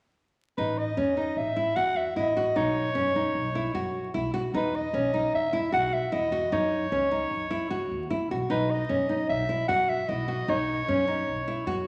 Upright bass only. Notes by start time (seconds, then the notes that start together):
0.58 A1
0.97 E2
1.37 A1
1.77 E2
2.16 A1
2.55 B1
2.95 F#2
3.35 B1
3.74 F#2
4.14 B1
4.54 E2
4.93 B1
5.34 E2
5.73 B1
6.13 E2
6.52 F#2
6.92 C#2
7.31 F#2
7.71 C#2
7.91 D#2
8.11 C#2
8.31 B1
8.50 B1
8.90 F#2
9.30 B1
9.69 F#2
10.09 B1
10.48 B1
10.88 F#2
11.27 B1
11.66 F#2